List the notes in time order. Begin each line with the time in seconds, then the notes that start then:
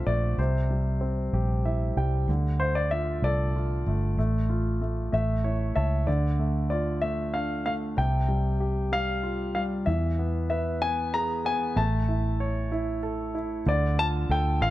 Already playing: D3 A3 C4 F4 A4
0.07 A#1 A3 D5
0.38 C2 C3 C5
0.71 G3
1.01 C4
1.33 A#1 G4
1.65 E4 E5
1.97 C2 G3 G5
2.28 D2 D3
2.60 A3 C5
2.75 D5
2.91 F4 E5
3.22 C2 A4 D5
3.56 F4
3.86 G1 A3
4.18 A1 A3
4.50 F4
4.81 A3
5.12 A1 A3 E5
5.44 E4 C#5
5.75 C#2 C#5 E5 A5
6.07 D2 D3 D5
6.39 A3
6.70 F4 D5
7.02 A3 E5
7.34 D4 F5
7.66 A3 F5
7.97 C2 C3 G5
8.28 G3
8.60 G4
8.92 G3 F5
9.23 F4
9.55 G3 F5
9.86 E2 E3 E5
10.19 B3
10.50 B4 E5
10.82 B3 G#5
11.14 G#4 A#5
11.45 B3 G#5
11.76 A1 A3 A5
12.08 E4
12.40 C#5
12.72 E4
13.03 A4
13.35 E4
13.66 D2 D3 D5
13.98 F4 A5
14.29 D2 A4 G5
14.61 A1 F4 F5